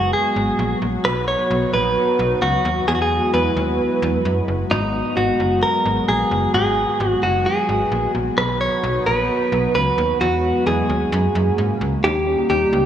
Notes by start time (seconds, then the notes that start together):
Already playing: F#1 D#3 F#3 G#3 B3 F#4
0.13 G#4
0.36 G#1
0.59 A#1
0.82 A#1
1.05 B1 D#3 B3 D#4 B4
1.28 C#5
1.51 B1
1.73 A#1 B4
2.19 B1
2.42 C#2 F#4
2.65 D#2
2.88 E2 G#3 B3 E4 G#4
2.95 F#4
3.02 G#4
3.34 E2 B4
3.57 D#2
4.02 E2
4.25 F#2
4.48 F#1
4.71 G#1 D#3 B3 D#4
5.17 G#1 F#4
5.40 F#1
5.63 A#4
5.85 G#1
6.08 A#1 G#4
6.31 F#1
6.54 G#1 G#4
7.00 G#1
7.07 F#4
7.23 F#1 F#4
7.46 G#4
7.69 G#1
7.92 A#1
8.15 A#1
8.38 B1 F#3 B3 D#4 F#4 B4
8.61 C#5
8.83 B1
9.06 A#1 B4
9.52 B1
9.75 C#2 B4
9.98 D#2
10.21 E2 E3 G#3 B3 F#4
10.67 E2 G#4
10.90 D#2
11.12 F#2 C#3 A#3
11.35 F#2
11.58 G#2
11.81 C#2
12.04 D#2 A#2 D#3 G3 A#3 D#4 G4
12.27 C#4
12.38 A#3 D#4 G4
12.50 D#2 D#4 G4
12.73 C#2 A#3 D#4 G4